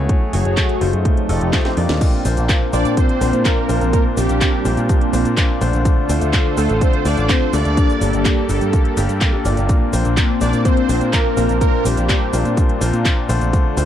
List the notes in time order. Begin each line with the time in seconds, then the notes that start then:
Already playing: A3 F#4 G#4 C#5
0.09 F#3 A3 F#4 G#4 C#5, kick, closed hi-hat
0.33 F#1 A3 F#4 G#4 C#5, open hi-hat
0.45 F#1, closed hi-hat
0.57 kick, clap, closed hi-hat
0.69 closed hi-hat
0.81 F#1 A3 D#4 F4 C5, open hi-hat
0.93 F#2, closed hi-hat
1.05 F3 C4 D#4 G4, kick, closed hi-hat
1.17 closed hi-hat
1.29 F1 A3 D#4 F4 A4, open hi-hat
1.41 F1, closed hi-hat
1.53 kick, snare, clap, closed hi-hat
1.65 A3 D#4 F4 C5, snare, closed hi-hat
1.77 F2 A#2 A#3 D4 F4 D5, open hi-hat
1.89 D#2, snare, closed hi-hat
2.01 A#3 C4 D4, kick, closed hi-hat, crash, cabasa
2.25 A#1 A#2 A#3 D4 F4 C5, open hi-hat, cabasa
2.37 A#1, closed hi-hat, cabasa
2.49 kick, clap, closed hi-hat, cabasa
2.73 A#1 A#2 A#3 D4 F4 C5 D5, open hi-hat, cabasa
2.85 A#2, closed hi-hat, cabasa
2.97 C4 C5, kick, closed hi-hat, cabasa
3.09 closed hi-hat
3.21 A#1 A#2 A#3 D4 F4 C5, open hi-hat, cabasa
3.33 A#2, closed hi-hat, cabasa
3.45 A#3 A#4, kick, clap, closed hi-hat, cabasa
3.69 A#1 A#2 A#3 D4 F4 C5, open hi-hat, cabasa
3.81 A#1, closed hi-hat, cabasa
3.93 A#3 A#4, kick, closed hi-hat, cabasa
4.17 A#1 A#2 G3 A#3 D4 F4 G4 C5, open hi-hat, cabasa
4.29 A#1, closed hi-hat, cabasa
4.41 kick, clap, closed hi-hat, cabasa
4.65 A#1 A#2 A#3 D4 F4 C5, open hi-hat, cabasa
4.77 A#2, closed hi-hat, cabasa
4.89 kick, closed hi-hat, cabasa
5.01 closed hi-hat
5.13 A#1 A#2 A#3 D4 F4 C5, open hi-hat, cabasa
5.25 A#2, closed hi-hat, cabasa
5.37 kick, clap, closed hi-hat, cabasa
5.61 A#1 D3 A3 D4 F4 C5, open hi-hat, cabasa
5.73 A#1, closed hi-hat, cabasa
5.85 D3 F4 A4 C5, kick, closed hi-hat, cabasa
6.09 D2 D3 A3 D4 F4 C5, open hi-hat, cabasa
6.21 D2, closed hi-hat, cabasa
6.33 kick, clap, closed hi-hat, cabasa
6.57 D2 D3 A3 D4 F4 A4 C5, open hi-hat, cabasa
6.69 A1, closed hi-hat, cabasa
6.81 C4 C5, kick, closed hi-hat, cabasa
6.93 closed hi-hat
7.05 D2 D3 A3 D4 F4 C5 D5, open hi-hat, cabasa
7.17 A1, closed hi-hat, cabasa
7.29 C4 C5, kick, clap, closed hi-hat, cabasa
7.53 D2 G2 G3 A#3 D4 A4 D5, open hi-hat, cabasa
7.65 D2, closed hi-hat, cabasa
7.77 A#3 G4 A4, kick, closed hi-hat, cabasa
7.89 cabasa
8.01 G1 G2 G3 A#3 D4 A4, open hi-hat, cabasa
8.13 G1, closed hi-hat, cabasa
8.25 kick, clap, closed hi-hat, cabasa
8.49 G1 G2 G3 A#3 D4 A4, open hi-hat, cabasa
8.61 G2, closed hi-hat, cabasa
8.73 kick, closed hi-hat, cabasa
8.85 closed hi-hat
8.97 G1 G2 G3 A#3 D4 G4, open hi-hat, cabasa
9.09 G2, closed hi-hat, cabasa
9.21 kick, clap, closed hi-hat, cabasa
9.33 G2 G3 A#3 D4 A4
9.45 G1 A#2 A#3 D4 F4 D5, open hi-hat, cabasa
9.57 G1, closed hi-hat, cabasa
9.69 C4 D4, kick, closed hi-hat, cabasa
9.93 A#1 A#2 A#3 D4 F4 C5, open hi-hat, cabasa
10.05 A#1, closed hi-hat, cabasa
10.17 kick, clap, closed hi-hat, cabasa
10.41 A#1 A#2 A#3 D4 F4 C5 D5, open hi-hat, cabasa
10.53 A#2, closed hi-hat, cabasa
10.65 C4 C5, kick, closed hi-hat, cabasa
10.77 closed hi-hat
10.89 A#1 A#2 A#3 D4 F4 C5, open hi-hat, cabasa
11.01 A#2, closed hi-hat, cabasa
11.13 A#3 A#4, kick, clap, closed hi-hat, cabasa
11.37 A#1 A#2 A#3 D4 F4 C5, open hi-hat, cabasa
11.49 A#1, closed hi-hat, cabasa
11.61 A#3 A#4, kick, closed hi-hat, cabasa
11.85 A#1 A#2 G3 A#3 D4 F4 G4 C5, open hi-hat, cabasa
11.97 A#1, closed hi-hat, cabasa
12.09 kick, clap, closed hi-hat, cabasa
12.33 A#1 A#2 A#3 D4 F4 C5, open hi-hat, cabasa
12.45 A#2, closed hi-hat, cabasa
12.57 kick, closed hi-hat, cabasa
12.69 closed hi-hat
12.81 A#1 A#2 A#3 D4 F4 C5, open hi-hat, cabasa
12.93 A#2, closed hi-hat, cabasa
13.05 kick, clap, closed hi-hat, cabasa
13.29 A#1 D3 A3 D4 F4 C5, open hi-hat, cabasa
13.41 A#1, closed hi-hat, cabasa
13.53 D3 D4 F4 A4 C5, kick, closed hi-hat, cabasa
13.77 D2 D3 A3 D4 F4 C5, open hi-hat, cabasa